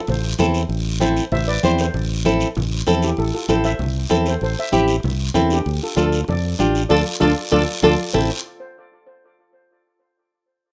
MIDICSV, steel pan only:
0, 0, Header, 1, 2, 480
1, 0, Start_track
1, 0, Key_signature, 0, "minor"
1, 0, Tempo, 310238
1, 1086, Time_signature, 4, 2, 24, 8
1, 16588, End_track
2, 0, Start_track
2, 0, Title_t, "Steel pan"
2, 0, Program_c, 0, 114
2, 135, Note_on_c, 0, 69, 60
2, 149, Note_on_c, 0, 72, 87
2, 800, Note_off_c, 0, 69, 0
2, 808, Note_off_c, 0, 72, 0
2, 1565, Note_on_c, 0, 72, 94
2, 1568, Note_on_c, 0, 69, 67
2, 2012, Note_off_c, 0, 72, 0
2, 2013, Note_off_c, 0, 69, 0
2, 2044, Note_on_c, 0, 72, 86
2, 2048, Note_on_c, 0, 76, 106
2, 2268, Note_off_c, 0, 72, 0
2, 2284, Note_on_c, 0, 71, 80
2, 2290, Note_on_c, 0, 74, 106
2, 2294, Note_off_c, 0, 76, 0
2, 2731, Note_off_c, 0, 71, 0
2, 2735, Note_off_c, 0, 74, 0
2, 2789, Note_on_c, 0, 69, 67
2, 2791, Note_on_c, 0, 72, 88
2, 4635, Note_off_c, 0, 69, 0
2, 4636, Note_off_c, 0, 72, 0
2, 4705, Note_on_c, 0, 64, 69
2, 4709, Note_on_c, 0, 67, 87
2, 4908, Note_off_c, 0, 64, 0
2, 4926, Note_on_c, 0, 64, 72
2, 4932, Note_on_c, 0, 69, 93
2, 4944, Note_off_c, 0, 67, 0
2, 5149, Note_off_c, 0, 64, 0
2, 5152, Note_off_c, 0, 69, 0
2, 5171, Note_on_c, 0, 69, 83
2, 5178, Note_on_c, 0, 65, 66
2, 5277, Note_off_c, 0, 69, 0
2, 5283, Note_off_c, 0, 65, 0
2, 5409, Note_on_c, 0, 69, 74
2, 5415, Note_on_c, 0, 72, 92
2, 5622, Note_off_c, 0, 72, 0
2, 5630, Note_off_c, 0, 69, 0
2, 5641, Note_on_c, 0, 72, 80
2, 5649, Note_on_c, 0, 76, 103
2, 6541, Note_off_c, 0, 72, 0
2, 6545, Note_off_c, 0, 76, 0
2, 6619, Note_on_c, 0, 69, 73
2, 6629, Note_on_c, 0, 72, 91
2, 6831, Note_off_c, 0, 69, 0
2, 6841, Note_off_c, 0, 72, 0
2, 6850, Note_on_c, 0, 69, 75
2, 6862, Note_on_c, 0, 72, 98
2, 7071, Note_off_c, 0, 69, 0
2, 7077, Note_off_c, 0, 72, 0
2, 7100, Note_on_c, 0, 72, 76
2, 7111, Note_on_c, 0, 76, 102
2, 8470, Note_off_c, 0, 72, 0
2, 8475, Note_off_c, 0, 76, 0
2, 8532, Note_on_c, 0, 62, 71
2, 8555, Note_on_c, 0, 67, 93
2, 8974, Note_off_c, 0, 62, 0
2, 9018, Note_on_c, 0, 65, 62
2, 9027, Note_on_c, 0, 69, 86
2, 9033, Note_off_c, 0, 67, 0
2, 9123, Note_off_c, 0, 65, 0
2, 9130, Note_off_c, 0, 69, 0
2, 9268, Note_on_c, 0, 65, 68
2, 9275, Note_on_c, 0, 69, 89
2, 9703, Note_off_c, 0, 65, 0
2, 9706, Note_off_c, 0, 69, 0
2, 9722, Note_on_c, 0, 69, 70
2, 9742, Note_on_c, 0, 74, 87
2, 10620, Note_off_c, 0, 69, 0
2, 10630, Note_off_c, 0, 74, 0
2, 10665, Note_on_c, 0, 74, 103
2, 10669, Note_on_c, 0, 65, 103
2, 10671, Note_on_c, 0, 69, 101
2, 10825, Note_off_c, 0, 74, 0
2, 10828, Note_off_c, 0, 65, 0
2, 10829, Note_off_c, 0, 69, 0
2, 11142, Note_on_c, 0, 69, 101
2, 11144, Note_on_c, 0, 65, 103
2, 11146, Note_on_c, 0, 74, 99
2, 11304, Note_off_c, 0, 69, 0
2, 11305, Note_off_c, 0, 65, 0
2, 11306, Note_off_c, 0, 74, 0
2, 11638, Note_on_c, 0, 69, 101
2, 11639, Note_on_c, 0, 65, 97
2, 11647, Note_on_c, 0, 74, 97
2, 11793, Note_off_c, 0, 69, 0
2, 11794, Note_off_c, 0, 65, 0
2, 11798, Note_off_c, 0, 74, 0
2, 12139, Note_on_c, 0, 74, 101
2, 12141, Note_on_c, 0, 65, 101
2, 12144, Note_on_c, 0, 69, 92
2, 12286, Note_off_c, 0, 74, 0
2, 12287, Note_off_c, 0, 65, 0
2, 12289, Note_off_c, 0, 69, 0
2, 12585, Note_on_c, 0, 72, 80
2, 12816, Note_off_c, 0, 72, 0
2, 16588, End_track
0, 0, End_of_file